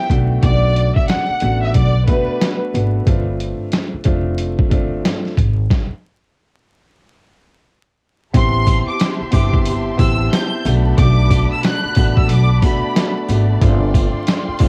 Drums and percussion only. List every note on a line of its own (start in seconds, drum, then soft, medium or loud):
0.10 kick medium
0.10 closed hi-hat medium
0.43 kick loud
0.43 closed hi-hat medium
0.76 closed hi-hat medium
0.96 kick medium
1.08 snare loud
1.08 closed hi-hat medium
1.40 closed hi-hat medium
1.74 kick medium
1.74 closed hi-hat medium
2.08 kick loud
2.08 closed hi-hat medium
2.41 snare loud
2.41 closed hi-hat medium
2.75 closed hi-hat medium
3.07 kick loud
3.07 closed hi-hat medium
3.40 closed hi-hat medium
3.72 snare loud
3.72 closed hi-hat medium
4.04 kick medium
4.04 closed hi-hat medium
4.38 closed hi-hat medium
4.59 kick loud
4.71 kick loud
4.71 closed hi-hat medium
5.05 snare loud
5.05 closed hi-hat medium
5.25 snare soft
5.37 kick medium
5.37 closed hi-hat medium
5.70 kick loud
5.70 snare medium
8.34 kick loud
8.34 closed hi-hat medium
8.34 sleigh bells soft
8.67 kick medium
8.67 closed hi-hat medium
8.67 sleigh bells medium
9.00 snare loud
9.00 closed hi-hat medium
9.00 sleigh bells soft
9.32 kick loud
9.32 closed hi-hat medium
9.32 sleigh bells medium
9.53 kick loud
9.65 closed hi-hat medium
9.65 sleigh bells medium
9.99 kick loud
9.99 closed hi-hat medium
9.99 sleigh bells medium
10.32 snare loud
10.32 closed hi-hat medium
10.32 sleigh bells medium
10.65 closed hi-hat medium
10.65 sleigh bells medium
10.98 kick loud
10.98 closed hi-hat medium
10.98 sleigh bells soft
11.30 kick loud
11.30 closed hi-hat medium
11.30 sleigh bells medium
11.63 snare loud
11.63 closed hi-hat medium
11.63 sleigh bells medium
11.95 kick loud
11.95 closed hi-hat medium
11.95 sleigh bells medium
12.17 kick loud
12.29 closed hi-hat loud
12.29 sleigh bells medium
12.62 kick loud
12.62 closed hi-hat medium
12.62 sleigh bells medium
12.96 snare loud
12.96 closed hi-hat medium
12.96 sleigh bells soft
13.28 closed hi-hat medium
13.28 sleigh bells medium
13.61 kick loud
13.61 closed hi-hat medium
13.61 sleigh bells soft
13.94 kick loud
13.94 closed hi-hat medium
13.94 sleigh bells medium
14.27 snare loud
14.27 closed hi-hat medium
14.27 sleigh bells medium
14.59 kick loud
14.59 closed hi-hat medium
14.59 sleigh bells medium